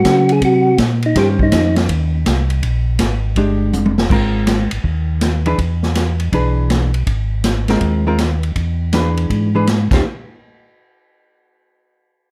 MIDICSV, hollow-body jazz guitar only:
0, 0, Header, 1, 2, 480
1, 0, Start_track
1, 0, Tempo, 370370
1, 1498, Time_signature, 4, 2, 24, 8
1, 15954, End_track
2, 0, Start_track
2, 0, Title_t, "Hollow-body jazz guitar"
2, 0, Program_c, 0, 26
2, 0, Note_on_c, 0, 54, 60
2, 0, Note_on_c, 0, 60, 63
2, 927, Note_off_c, 0, 54, 0
2, 931, Note_off_c, 0, 60, 0
2, 1500, Note_on_c, 0, 51, 65
2, 1510, Note_on_c, 0, 61, 62
2, 1516, Note_on_c, 0, 67, 71
2, 1520, Note_on_c, 0, 72, 74
2, 2834, Note_off_c, 0, 51, 0
2, 2839, Note_off_c, 0, 61, 0
2, 2842, Note_off_c, 0, 67, 0
2, 2844, Note_off_c, 0, 72, 0
2, 4371, Note_on_c, 0, 56, 52
2, 4376, Note_on_c, 0, 62, 60
2, 4385, Note_on_c, 0, 67, 62
2, 5099, Note_off_c, 0, 56, 0
2, 5102, Note_off_c, 0, 62, 0
2, 5106, Note_off_c, 0, 67, 0
2, 5329, Note_on_c, 0, 56, 55
2, 5340, Note_on_c, 0, 60, 54
2, 5343, Note_on_c, 0, 65, 58
2, 5343, Note_on_c, 0, 70, 64
2, 6058, Note_off_c, 0, 56, 0
2, 6064, Note_off_c, 0, 60, 0
2, 6065, Note_off_c, 0, 65, 0
2, 6065, Note_off_c, 0, 70, 0
2, 7078, Note_on_c, 0, 52, 64
2, 7084, Note_on_c, 0, 62, 65
2, 7087, Note_on_c, 0, 68, 62
2, 7095, Note_on_c, 0, 71, 67
2, 7228, Note_off_c, 0, 52, 0
2, 7231, Note_off_c, 0, 62, 0
2, 7232, Note_off_c, 0, 68, 0
2, 7236, Note_off_c, 0, 71, 0
2, 8208, Note_on_c, 0, 52, 56
2, 8210, Note_on_c, 0, 62, 61
2, 8221, Note_on_c, 0, 68, 55
2, 8223, Note_on_c, 0, 71, 60
2, 8939, Note_off_c, 0, 52, 0
2, 8940, Note_off_c, 0, 62, 0
2, 8946, Note_off_c, 0, 68, 0
2, 8947, Note_off_c, 0, 71, 0
2, 9974, Note_on_c, 0, 56, 66
2, 9978, Note_on_c, 0, 60, 63
2, 9980, Note_on_c, 0, 65, 64
2, 9985, Note_on_c, 0, 70, 60
2, 10418, Note_off_c, 0, 56, 0
2, 10419, Note_off_c, 0, 60, 0
2, 10420, Note_off_c, 0, 65, 0
2, 10423, Note_off_c, 0, 70, 0
2, 10454, Note_on_c, 0, 56, 67
2, 10461, Note_on_c, 0, 60, 59
2, 10469, Note_on_c, 0, 65, 67
2, 10469, Note_on_c, 0, 70, 75
2, 10598, Note_off_c, 0, 56, 0
2, 10601, Note_off_c, 0, 60, 0
2, 10606, Note_off_c, 0, 65, 0
2, 10606, Note_off_c, 0, 70, 0
2, 11581, Note_on_c, 0, 52, 50
2, 11584, Note_on_c, 0, 62, 52
2, 11594, Note_on_c, 0, 68, 52
2, 11596, Note_on_c, 0, 71, 61
2, 12309, Note_off_c, 0, 52, 0
2, 12310, Note_off_c, 0, 62, 0
2, 12315, Note_off_c, 0, 68, 0
2, 12316, Note_off_c, 0, 71, 0
2, 12374, Note_on_c, 0, 52, 59
2, 12383, Note_on_c, 0, 62, 64
2, 12383, Note_on_c, 0, 68, 56
2, 12389, Note_on_c, 0, 71, 65
2, 12520, Note_off_c, 0, 52, 0
2, 12524, Note_off_c, 0, 62, 0
2, 12524, Note_off_c, 0, 68, 0
2, 12528, Note_off_c, 0, 71, 0
2, 12866, Note_on_c, 0, 51, 62
2, 12868, Note_on_c, 0, 61, 52
2, 12877, Note_on_c, 0, 67, 63
2, 12877, Note_on_c, 0, 72, 63
2, 13007, Note_off_c, 0, 51, 0
2, 13008, Note_off_c, 0, 61, 0
2, 13012, Note_off_c, 0, 67, 0
2, 13012, Note_off_c, 0, 72, 0
2, 15954, End_track
0, 0, End_of_file